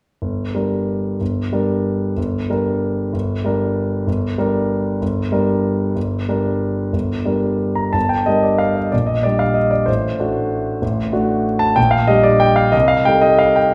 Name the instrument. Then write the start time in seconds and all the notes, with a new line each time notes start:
grand piano
0.22 G1
0.55 G3 D4 A#4
1.21 G1
1.52 G3 D4 A#4
2.17 G1
2.50 G3 D4 A#4
3.13 G1
3.45 G3 D4 A#4
4.07 G1
4.38 G3 D4 A#4
5.02 G1
5.32 G3 D4 A#4
5.96 G1
6.29 G3 D4 A#4
6.93 G1
7.25 G3 D4 A#4
7.75 A#5
7.93 G1 A5
8.09 G5
8.26 G3 D4 A#4 D#5
8.43 D5
8.58 F5
8.75 D#5
8.92 A#1 D5
9.06 D#5
9.23 G3 D4 G4 D5
9.39 F5
9.54 D#5
9.71 D5
9.86 A1 C5
10.19 A3 D4 F#4
10.82 A1
11.13 A3 D4 F#4
11.59 A5
11.76 A#1 G5
11.91 F5
12.07 G3 D4 G4 D#5
12.23 D5
12.40 G5
12.56 F5
12.72 C2 D#5
12.88 F5
13.05 G3 D#4 A4 G5
13.21 D#5
13.38 F5
13.56 G5